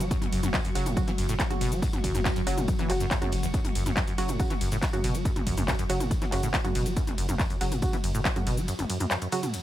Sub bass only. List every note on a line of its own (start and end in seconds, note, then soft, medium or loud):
0.00 0.11 F#1 medium
0.32 0.43 F#1 loud
0.43 0.54 F#1 medium
0.75 0.86 F#1 loud
0.86 0.97 F#1 medium
1.18 1.28 F#1 loud
1.29 1.39 F#1 medium
1.61 1.71 F#1 loud
1.72 1.82 F#1 medium
2.04 2.14 F#1 loud
2.15 2.25 F#1 medium
2.47 2.57 F#1 loud
2.58 2.68 F#1 medium
2.90 3.00 F#1 loud
3.01 3.11 F#1 medium
3.33 3.43 F#1 loud
3.43 3.54 F#1 medium
3.75 3.85 F#1 loud
3.86 3.97 F#1 medium
4.18 4.28 F#1 loud
4.29 4.39 F#1 medium
4.61 4.71 F#1 loud
4.72 4.82 F#1 medium
5.04 5.14 F#1 loud
5.15 5.25 F#1 medium
5.47 5.57 F#1 loud
5.57 5.68 F#1 medium
5.90 6.00 F#1 loud
6.00 6.11 F#1 medium
6.32 6.42 F#1 loud
6.43 6.54 F#1 medium
6.75 6.85 F#1 loud
6.86 6.96 F#1 medium
7.18 7.28 F#1 loud
7.29 7.39 F#1 medium
7.61 7.71 F#1 loud
7.72 7.82 F#1 medium
8.04 8.14 F#1 loud
8.15 8.25 F#1 medium
8.47 8.57 F#1 loud
8.57 8.68 F#1 medium